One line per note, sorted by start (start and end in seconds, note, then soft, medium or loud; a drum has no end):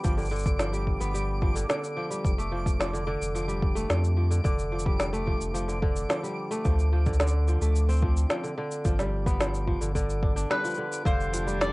0.00 0.16 D3 medium
0.00 0.24 F3 medium
0.00 0.24 G3 medium
0.00 1.00 B3 medium
0.00 11.06 D6 medium
0.05 0.96 G1 loud
0.05 kick loud
0.05 cabasa medium
0.17 0.30 D3 medium
0.17 cabasa soft
0.22 cabasa soft
0.25 cabasa soft
0.29 1.54 D3 medium
0.29 cabasa soft
0.32 cabasa soft
0.36 cabasa soft
0.39 cabasa soft
0.43 kick loud
0.43 cabasa soft
0.46 cabasa medium
0.59 1.41 F3 medium
0.59 snare medium
0.59 cabasa medium
0.73 1.13 G3 medium
0.73 cabasa soft
0.87 kick medium
1.00 1.65 G1 loud
1.00 2.87 B3 medium
1.00 cabasa medium
1.14 1.61 G3 medium
1.14 cabasa medium
1.42 1.61 F3 medium
1.42 kick loud
1.55 1.68 D3 medium
1.55 cabasa medium
1.69 2.30 D3 medium
1.69 snare medium
1.69 cabasa soft
1.84 cabasa soft
1.97 2.30 F3 medium
2.10 2.30 G3 medium
2.10 cabasa medium
2.25 3.16 F1 medium
2.25 kick loud
2.25 cabasa medium
2.38 3.75 A3 medium
2.38 cabasa soft
2.52 2.78 F3 medium
2.66 kick medium
2.66 cabasa medium
2.80 2.99 F3 medium
2.80 snare medium
2.80 cabasa medium
2.93 3.06 D3 medium
2.93 cabasa soft
3.07 4.29 D3 loud
3.21 3.85 F1 loud
3.21 cabasa medium
3.35 3.88 F3 medium
3.35 cabasa medium
3.48 4.36 G3 medium
3.48 cabasa soft
3.62 kick medium
3.75 5.12 A3 medium
3.75 cabasa medium
3.89 4.40 F2 medium
3.89 4.16 F3 medium
3.89 snare medium
3.89 cabasa soft
4.04 cabasa soft
4.17 4.36 F3 medium
4.31 4.43 D3 medium
4.31 cabasa medium
4.44 5.37 F1 loud
4.44 5.67 D3 medium
4.44 kick loud
4.44 cabasa soft
4.59 cabasa soft
4.72 5.25 F3 medium
4.79 cabasa medium
4.85 5.74 G3 medium
4.85 kick loud
5.00 snare medium
5.00 cabasa soft
5.13 6.50 A3 medium
5.13 cabasa soft
5.26 5.53 F3 medium
5.26 kick soft
5.41 6.06 F1 loud
5.41 cabasa medium
5.54 5.74 F3 medium
5.54 cabasa medium
5.68 5.81 D3 medium
5.68 cabasa soft
5.82 6.70 D3 loud
5.82 kick medium
5.96 cabasa medium
6.09 6.63 F3 medium
6.09 snare medium
6.09 cabasa medium
6.23 6.70 G3 medium
6.23 cabasa soft
6.51 7.61 A3 loud
6.51 cabasa medium
6.65 7.57 D2 loud
6.65 6.91 F3 medium
6.65 kick loud
6.65 cabasa soft
6.79 cabasa soft
6.92 7.12 F3 medium
7.06 7.19 D3 medium
7.06 kick medium
7.06 cabasa soft
7.13 cabasa soft
7.20 8.42 D3 loud
7.20 snare medium
7.20 cabasa soft
7.27 cabasa medium
7.48 8.01 F3 medium
7.48 cabasa soft
7.61 8.26 D2 loud
7.61 9.61 A3 medium
7.61 cabasa medium
7.76 cabasa medium
7.89 9.32 C4 loud
7.89 cabasa soft
7.92 cabasa soft
7.94 cabasa soft
7.99 8.28 F3 medium
7.99 kick medium
7.99 cabasa soft
8.17 cabasa medium
8.30 8.49 F3 medium
8.30 snare medium
8.30 cabasa soft
8.43 8.56 D3 medium
8.43 cabasa soft
8.58 8.90 D3 loud
8.72 cabasa medium
8.85 9.77 G1 loud
8.85 9.39 F3 medium
8.85 kick loud
8.85 cabasa medium
8.99 9.87 G3 medium
8.99 snare soft
8.99 cabasa soft
9.26 11.12 B3 loud
9.26 kick loud
9.26 cabasa medium
9.40 9.66 F3 medium
9.40 snare medium
9.40 cabasa medium
9.54 cabasa soft
9.67 9.87 F3 medium
9.67 kick medium
9.81 10.46 G1 loud
9.81 9.94 D3 medium
9.81 cabasa medium
9.95 10.76 D3 loud
9.95 kick medium
9.95 cabasa medium
10.10 cabasa soft
10.23 10.36 D4 medium
10.23 kick loud
10.36 11.73 D4 medium
10.36 cabasa medium
10.50 10.83 G3 medium
10.50 11.02 B4 medium
10.50 snare medium
10.64 10.83 F3 medium
10.64 cabasa soft
10.74 11.04 D3 medium
10.74 cabasa soft
10.93 cabasa medium
11.05 11.73 F1 loud
11.05 11.73 D3 loud
11.05 11.73 F3 medium
11.05 11.73 A3 medium
11.05 11.73 D4 medium
11.05 11.73 G4 medium
11.05 11.61 C5 medium
11.05 11.19 F5 medium
11.05 kick loud
11.05 cabasa soft
11.21 cabasa soft
11.33 11.73 F3 medium
11.33 open hi-hat medium
11.33 cabasa medium
11.47 11.73 G3 medium
11.47 cabasa soft
11.61 11.73 D5 loud
11.61 snare loud
11.61 cabasa soft